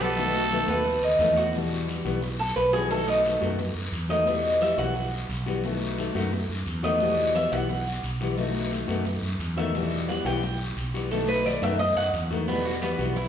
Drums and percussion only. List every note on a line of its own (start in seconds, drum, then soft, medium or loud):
0.00 short guiro medium
0.00 maracas soft
0.17 long guiro medium
0.17 maracas medium
0.35 maracas medium
0.51 short guiro medium
0.51 maracas medium
0.68 short guiro medium
0.68 maracas soft
0.85 long guiro medium
0.85 maracas medium
1.02 maracas medium
1.19 short guiro medium
1.19 maracas medium
1.37 short guiro medium
1.37 maracas soft
1.53 long guiro medium
1.53 maracas medium
1.89 short guiro medium
1.89 maracas medium
2.06 short guiro medium
2.06 maracas soft
2.22 long guiro medium
2.22 maracas medium
2.56 short guiro medium
2.56 maracas medium
2.73 short guiro medium
2.73 maracas soft
2.91 long guiro medium
2.91 maracas medium
3.08 maracas medium
3.25 short guiro medium
3.25 maracas medium
3.42 short guiro medium
3.42 maracas soft
3.58 long guiro medium
3.58 maracas medium
3.93 short guiro medium
3.93 maracas medium
4.10 short guiro medium
4.10 maracas soft
4.27 long guiro medium
4.27 maracas medium
4.44 maracas medium
4.61 short guiro medium
4.61 maracas medium
4.79 short guiro medium
4.79 maracas soft
4.95 long guiro medium
4.95 maracas medium
5.13 maracas medium
5.30 short guiro medium
5.30 maracas medium
5.46 short guiro medium
5.46 maracas soft
5.64 long guiro medium
5.64 maracas medium
5.98 short guiro medium
5.98 maracas medium
6.15 short guiro medium
6.15 maracas soft
6.32 long guiro medium
6.32 maracas medium
6.66 short guiro medium
6.66 maracas medium
6.83 short guiro medium
6.83 maracas soft
7.00 long guiro medium
7.00 maracas medium
7.35 short guiro medium
7.35 maracas medium
7.52 short guiro medium
7.52 maracas soft
7.69 long guiro medium
7.69 maracas medium
7.86 maracas medium
8.03 short guiro medium
8.03 maracas medium
8.21 short guiro medium
8.21 maracas soft
8.38 long guiro medium
8.38 maracas medium
8.71 short guiro medium
8.71 maracas medium
8.88 short guiro medium
8.88 maracas soft
9.05 long guiro medium
9.05 maracas medium
9.23 maracas medium
9.40 short guiro medium
9.40 maracas medium
9.58 short guiro medium
9.58 maracas soft
9.75 long guiro medium
9.75 maracas medium
9.92 maracas medium
10.09 short guiro medium
10.09 maracas medium
10.26 short guiro medium
10.26 maracas soft
10.43 long guiro medium
10.43 maracas medium
10.77 short guiro medium
10.77 maracas medium
10.94 short guiro medium
10.94 maracas soft
11.11 long guiro medium
11.11 maracas medium
11.29 maracas medium
11.45 short guiro medium
11.45 maracas medium
11.62 short guiro medium
11.62 maracas soft
11.79 long guiro medium
11.79 maracas medium
12.14 short guiro medium
12.14 maracas medium
12.31 short guiro medium
12.31 maracas soft
12.48 long guiro medium
12.48 maracas medium
12.65 maracas medium
12.82 short guiro medium
12.82 maracas medium
12.99 short guiro medium
12.99 maracas soft
13.16 long guiro medium
13.16 maracas medium